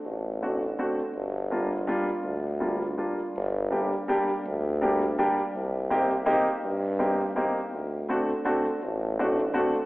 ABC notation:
X:1
M:3/4
L:1/8
Q:"Swing" 1/4=164
K:Gm
V:1 name="Upright piano"
z2 [A,CD^F] z [A,CDF] z | z2 [G,B,DF] z [G,B,DF] z | z2 [G,B,DF] z [G,B,DF] z | z2 [G,B,DG] z [G,B,DG] z |
z2 [G,B,DG] z [G,B,DG] z | z2 [B,CEG] z [B,CEG] z | z2 [B,CEG] z [B,CEG] z | z2 [A,CD^F] z [A,CDF] z |
z2 [A,CD^F] z [A,CDF] z |]
V:2 name="Tuba" clef=bass
A,,,6 | G,,,6 | D,,6 | G,,,4- G,,, z |
D,,6 | C,,6 | G,,6 | D,,4- D,, z |
A,,,6 |]